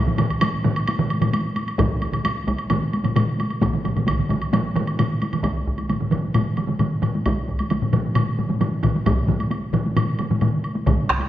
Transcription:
0.06 taiko low-mid, taiko mid, taiko high
0.18 taiko low-mid, taiko mid, taiko high, high woodblock
0.30 taiko high, high woodblock
0.41 taiko low-mid, taiko mid, taiko high, high woodblock
0.53 taiko high
0.64 taiko low-mid, taiko mid, taiko high
0.76 taiko high, high woodblock
0.87 taiko high, high woodblock
0.99 taiko low-mid, taiko mid, taiko high
1.10 taiko high, high woodblock
1.21 taiko low-mid, taiko mid, taiko high, high woodblock
1.33 taiko high, high woodblock
1.45 taiko high
1.56 taiko high, high woodblock
1.68 taiko high, high woodblock
1.78 taiko, taiko low-mid, taiko mid, taiko high, high woodblock
2.02 taiko high, high woodblock
2.13 taiko low-mid, taiko mid, taiko high, high woodblock
2.25 taiko high, high woodblock
2.36 taiko high
2.47 taiko, taiko high, high woodblock
2.59 taiko high, high woodblock
2.70 taiko low-mid, taiko mid, taiko high, high woodblock
2.83 taiko high
2.93 taiko high, high woodblock
3.04 taiko low-mid, taiko mid, taiko high, high woodblock
3.16 taiko low-mid, taiko mid, taiko high, high woodblock
3.28 taiko high
3.39 taiko high, high woodblock
3.50 taiko high, high woodblock
3.61 taiko, taiko low-mid, taiko mid, taiko high, high woodblock
3.73 taiko low-mid, taiko mid, taiko high
3.85 taiko low-mid, taiko mid, taiko high, high woodblock
3.96 taiko low-mid, taiko mid, taiko high, high woodblock
4.07 taiko, taiko low-mid, taiko mid, taiko high, high woodblock
4.19 taiko low-mid, taiko mid, taiko high
4.30 taiko, taiko low-mid, taiko mid, taiko high, high woodblock
4.42 taiko high, high woodblock
4.53 taiko low-mid, taiko mid, taiko high, high woodblock
4.65 taiko high
4.75 taiko low-mid, taiko mid, taiko high, high woodblock
4.87 high woodblock
4.99 taiko low-mid, taiko mid, taiko high, high woodblock
5.10 taiko high
5.22 taiko high, high woodblock
5.33 taiko low-mid, taiko mid, taiko high, high woodblock
5.44 taiko, taiko high, high woodblock
5.67 taiko
5.78 taiko high, high woodblock
5.89 taiko low-mid, taiko mid, taiko high, high woodblock
6.00 taiko low-mid, taiko mid
6.12 taiko low-mid, taiko mid, high woodblock
6.24 taiko high
6.34 taiko low-mid, taiko mid, taiko high, high woodblock
6.57 taiko low-mid, taiko mid, taiko high, high woodblock
6.68 taiko low-mid, taiko mid, taiko high
6.80 taiko low-mid, taiko mid, taiko high, high woodblock
7.03 taiko low-mid, taiko mid, high woodblock
7.15 taiko high
7.26 taiko, taiko high, high woodblock
7.48 taiko
7.59 taiko high, high woodblock
7.70 taiko low-mid, taiko mid, taiko high, high woodblock
7.82 taiko low-mid, taiko mid
7.93 taiko low-mid, taiko mid, high woodblock
8.05 taiko high
8.15 taiko low-mid, taiko mid, taiko high, high woodblock
8.38 taiko low-mid, taiko mid, taiko high
8.49 taiko low-mid, taiko mid, taiko high
8.61 taiko low-mid, taiko mid, taiko high, high woodblock
8.83 taiko, taiko low-mid, taiko mid, high woodblock
8.95 taiko high
9.06 taiko, taiko low-mid, taiko mid, taiko high, high woodblock
9.29 taiko, taiko low-mid, taiko mid
9.40 taiko high, high woodblock
9.51 taiko high, high woodblock
9.73 taiko low-mid, taiko mid, high woodblock
9.86 taiko high
9.97 taiko low-mid, taiko mid, taiko high, high woodblock
10.19 taiko low-mid, taiko mid, taiko high, high woodblock
10.30 taiko low-mid, taiko mid, taiko high
10.41 taiko low-mid, taiko mid, taiko high, high woodblock
10.64 high woodblock
10.76 taiko high
10.87 taiko, taiko low-mid, taiko mid, taiko high, high woodblock
11.09 taiko rim, taiko
11.20 taiko high, high woodblock

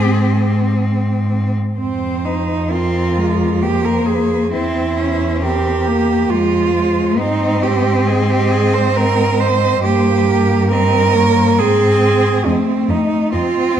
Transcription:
Already playing: G#2 C4 G#4
1.78 F2 C4 C5
2.26 D#4
2.71 C4 F4 A#4
3.17 G#3
3.61 A#3 G4 C5
3.85 A#4
4.07 G#4
4.52 E2 C4 E4 C5
4.98 C#4
5.42 C4 G4 A#4
5.87 A#3
6.30 F2 G#3 F4 C5
6.75 G#3
7.18 G#2 C4 D#4 C5
7.63 G4
8.07 G#4 D#5
8.30 G4
8.51 G#4
8.74 C5
8.96 A#4 D#5
9.40 C5
9.84 G2 A#3 G4 C5
10.27 A#4
10.71 C4 A#4 D#5
11.15 A#3 C#5
11.59 G#2 C4 G#4 C5
12.45 F2 A3 C4 D#5
12.89 F2 D#4 D#5
13.33 F2 C4 F4 D#5

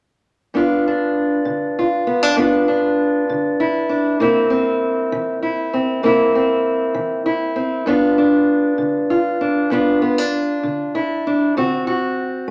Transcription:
0.54 G2 B3 D4 F4
0.88 D4
1.45 D3
1.79 F4
2.07 B3
2.23 D4
2.37 G2 B3 D4 F4
2.68 D4
3.29 D3
3.60 E4
3.89 D4
4.20 C3 A#3 C4 E4
4.50 C4
5.12 E3
5.42 E4
5.73 C4
6.03 C3 A#3 C4 E4
6.35 C4
6.94 E3
7.26 E4
7.56 C4
7.86 G2 B3 D4 F4
8.18 D4
8.78 D3
9.10 F4
9.41 D4
9.70 G2 B3 D4 F4
10.02 B3
10.18 D4
10.63 D3
10.95 E4
11.27 D4
11.57 D3 C4 F#4
11.87 F#4

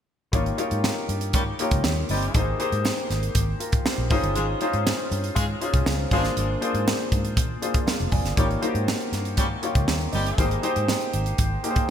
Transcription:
0.32 G#1 G3 A#3 C#4 D#4 F4 G4 C#5, kick, closed hi-hat, muted conga
0.46 closed hi-hat
0.57 A#3 D#4 F4 G4 C#5, closed hi-hat, muted conga
0.71 G#2, closed hi-hat
0.84 snare, high conga
1.09 G2, closed hi-hat
1.21 closed hi-hat
1.33 G#2 G3 A#3 C#4 G4, kick, closed hi-hat, muted conga
1.59 A#3 D#4 F4 G4 C#5, closed hi-hat
1.71 C#2, kick, closed hi-hat
1.84 D#2, snare, high conga
2.09 G1 G3 C4 D#4 G4, open hi-hat, high conga
2.23 closed hi-hat
2.34 G#1 A#3 D#4 G4 G#4 C5, kick, closed hi-hat, muted conga
2.59 A#3 D#4 G4 G#4 C5, closed hi-hat
2.72 G#2, closed hi-hat
2.85 snare, high conga
3.10 G#1, snare, closed hi-hat
3.23 closed hi-hat
3.35 G#1, kick, closed hi-hat, muted conga
3.60 F4 A#4, closed hi-hat
3.72 kick, closed hi-hat
3.86 G4 C5, snare, high conga
3.98 A#1
4.10 G#1 C#4 D#4 F4 G#4 C5, kick, open hi-hat, high conga
4.23 G1, closed hi-hat
4.35 G#1 G#3 C#4 F4 G#4, closed hi-hat, muted conga
4.61 C#4 D#4 F4 G#4 C5, closed hi-hat, muted conga
4.73 G#2, closed hi-hat
4.87 snare, high conga
5.11 G2, closed hi-hat
5.24 closed hi-hat
5.35 G#2 G#3 C#4 F4 G#4, kick, closed hi-hat, muted conga
5.61 C#4 D#4 F4 G#4 C5, closed hi-hat
5.73 C2, kick, closed hi-hat
5.86 C#2, snare, high conga
6.11 G#1 G#3 A#3 C#4 D4 F4 G#4 C5, kick, open hi-hat, high conga
6.18 D4
6.25 snare, closed hi-hat
6.37 G#1, closed hi-hat, muted conga
6.61 A#3 D4 F4 G#4 C5, closed hi-hat, muted conga
6.74 G#2, closed hi-hat
6.88 snare, high conga
7.12 G#2, kick, closed hi-hat
7.25 closed hi-hat
7.37 A#2, kick, closed hi-hat, muted conga
7.62 A#3 D4 F4 G#4 C5, closed hi-hat
7.74 kick, closed hi-hat
7.86 C5 F5, snare, high conga
8.00 F1, closed hi-hat
8.12 F#1 D5 G#5, kick, open hi-hat, high conga
8.25 G1, snare, closed hi-hat
8.36 G#1 G3 A#3 C#4 D#4 F4 G4 C#5, kick, closed hi-hat, muted conga
8.51 closed hi-hat
8.61 A#3 D#4 F4 F#4 C5, closed hi-hat, muted conga
8.68 G4
8.75 G#2, closed hi-hat
8.88 snare, high conga
9.00 closed hi-hat
9.12 G2, snare, closed hi-hat
9.25 closed hi-hat
9.37 G#2 G3 A#3 C#4 G4, kick, closed hi-hat, muted conga
9.62 A#3 D#4 F4 G4 C#5, closed hi-hat
9.75 C#2, kick, closed hi-hat
9.88 D#2, snare, high conga
10.01 closed hi-hat
10.13 G1 G3 C4 D#4 G4, open hi-hat, high conga
10.26 closed hi-hat
10.37 G#1 A#3 D#4 G4 G#4 C5, kick, closed hi-hat, muted conga
10.51 closed hi-hat
10.63 A#3 D#4 G4 G#4 C5, closed hi-hat, muted conga
10.76 G#2, closed hi-hat
10.88 snare, high conga
11.01 closed hi-hat
11.13 G#1, closed hi-hat
11.26 closed hi-hat
11.38 G#1, kick, closed hi-hat, muted conga
11.63 A#3 D#4 G4 G#4 A#4, closed hi-hat
11.71 C5
11.76 kick, closed hi-hat

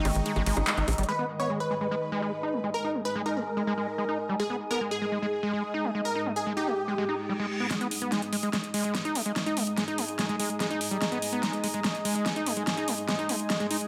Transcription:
Already playing: D#3 G#3 D#4 D#5 G5 C#6
0.05 G#1 G#3, open hi-hat, ride, high bongo
0.15 G#1, closed hi-hat
0.26 G#3, closed hi-hat, ride
0.36 G#1 G#3, closed hi-hat, high bongo
0.46 G#1 G#3, open hi-hat, ride
0.57 G#1, closed hi-hat, high bongo
0.67 G#3, clap, closed hi-hat, ride
0.77 G#1 D#4, closed hi-hat
0.88 A#1, closed hi-hat, open hi-hat, high bongo
0.93 closed hi-hat
0.98 G#1 G3, closed hi-hat
1.03 closed hi-hat
1.08 G#3 D#4 B4
1.19 B3
1.40 B3 C#5
1.50 G#3
1.60 B4
1.70 G#3 D#6
1.81 G#3
1.91 G#3
2.12 G#3
2.22 G#3
2.43 D#4
2.53 G#3
2.64 G#3
2.74 A#4
2.84 D#4
2.95 G#3
3.05 B4
3.15 G#3
3.26 D#4 A#4
3.36 G#3
3.57 G#3
3.67 G#3
3.77 G#3
3.98 G#3
4.09 D#4
4.29 G3
4.40 G#3 G#4
4.50 B3
4.71 B3 A#4
4.81 G#3
4.91 G#4
5.02 G#3
5.12 G#3
5.22 G#3
5.43 G#3
5.53 G#3
5.74 D#4
5.84 G#3
5.95 G#3
6.05 A#4
6.15 D#4
6.26 G#3
6.36 G#4
6.46 G#3
6.57 D#4 G4
6.67 G#3
6.88 G#3, reverse cymbal
6.98 G#3
7.09 D#4
7.29 G3
7.40 G#3
7.60 B3
7.71 G#3 D#4, snare, closed hi-hat
7.81 B3, closed hi-hat
7.87 G#4 D#5
7.91 open hi-hat
8.02 B3, closed hi-hat
8.12 G#3, snare, closed hi-hat
8.22 closed hi-hat
8.33 G#3, open hi-hat
8.43 G#3, closed hi-hat
8.53 G#3, snare, closed hi-hat
8.64 closed hi-hat
8.74 G#3, open hi-hat
8.84 G#3, closed hi-hat
8.95 snare, closed hi-hat
9.05 D#4, closed hi-hat
9.15 G#3, open hi-hat
9.26 G#3, closed hi-hat
9.36 snare, closed hi-hat
9.46 D#4, closed hi-hat
9.57 G#3, open hi-hat
9.67 closed hi-hat
9.77 G#3, snare, closed hi-hat
9.88 D#4, closed hi-hat
9.98 G#3, open hi-hat
10.09 closed hi-hat
10.19 G#3, snare, closed hi-hat
10.29 G#3, closed hi-hat
10.39 G#3, open hi-hat
10.50 closed hi-hat
10.60 G#3, snare, closed hi-hat
10.71 D#4, closed hi-hat
10.81 open hi-hat
10.91 G3, closed hi-hat
11.02 G#3, snare, closed hi-hat
11.12 B3, closed hi-hat
11.22 open hi-hat
11.33 B3, closed hi-hat
11.43 G#3, snare, closed hi-hat
11.53 closed hi-hat
11.64 G#3, open hi-hat
11.74 G#3, closed hi-hat
11.84 G#3, snare, closed hi-hat
11.95 closed hi-hat
12.05 G#3, open hi-hat
12.15 G#3, closed hi-hat
12.26 snare, closed hi-hat
12.36 D#4, closed hi-hat
12.46 G#3, open hi-hat
12.57 G#3, closed hi-hat
12.67 snare, closed hi-hat
12.77 D#4, closed hi-hat
12.88 G#3, open hi-hat
12.98 closed hi-hat
13.08 G#3, snare, closed hi-hat
13.19 D#4, closed hi-hat
13.29 G#3, open hi-hat
13.40 closed hi-hat
13.50 G#3, snare, closed hi-hat
13.60 G#3, closed hi-hat
13.71 D#4, open hi-hat
13.81 closed hi-hat

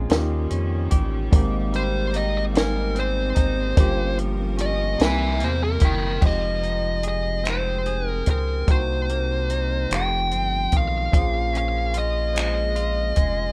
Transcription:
Already playing: A#2 G#3 A#3 C4 C#4 F4 G#4
0.09 D#2 D#3 G3 A#3 C#4 F4, snare, closed hi-hat
0.13 G4
0.50 F2 C#4, closed hi-hat
0.91 A1 G4, kick, closed hi-hat
1.31 G#1 G#2 D#3 A#3 C4 D#4, kick, closed hi-hat
1.36 G4
1.73 G3 C5, closed hi-hat
2.13 D#4 D#5, closed hi-hat
2.38 D#5
2.53 G3 A#3 B3 D#4, snare, closed hi-hat
2.58 C4 A#4 G#5
2.95 C4, closed hi-hat
3.00 C5
3.35 G#1 D#4, kick, closed hi-hat
3.76 G1 G2 G3 A#3 C#4 F4 A#4, kick, closed hi-hat
3.80 G4
4.18 F3, closed hi-hat
4.57 C#4, closed hi-hat
4.61 D#5
4.98 C2 C3 G3 A#3 C4 E4, snare, closed hi-hat
5.03 G3 E5 G#5
5.39 E2 A#3, closed hi-hat
5.44 C5
5.64 A#4
5.80 F#1 E4, kick, closed hi-hat
5.85 G5
6.21 F1 F3 G#3 C4 D#4, kick, crash
6.26 G4 D#5
6.63 D#4, closed hi-hat
7.03 G#4, closed hi-hat
7.08 D#5
7.43 G#3 C4 D#4, finger snap, closed hi-hat
7.48 C5 G5
7.86 G#4, closed hi-hat
8.09 A#4
8.26 C#2 C4, kick, closed hi-hat
8.30 A#4
8.67 C2 C3 A#3 C4 D#4 F#4, kick, closed hi-hat
8.72 C5
9.09 A#3, closed hi-hat
9.50 D#4, closed hi-hat
9.89 F1 F2 G#3 C4 D#4, finger snap, closed hi-hat
9.93 A3 G4 G5
10.31 G1 C4, closed hi-hat
10.72 B1 D#3, kick, closed hi-hat
10.77 F5
11.12 A#1 A#2 C#4 F4 C5, kick, closed hi-hat
11.17 G#4
11.53 C#4, closed hi-hat
11.57 F5
11.94 F4, closed hi-hat
11.98 D#5
12.33 G#3 C#4 F4 C5, closed hi-hat
12.38 G#4 D#5, finger snap
12.76 F4, closed hi-hat
13.16 F1 G#3, kick, closed hi-hat

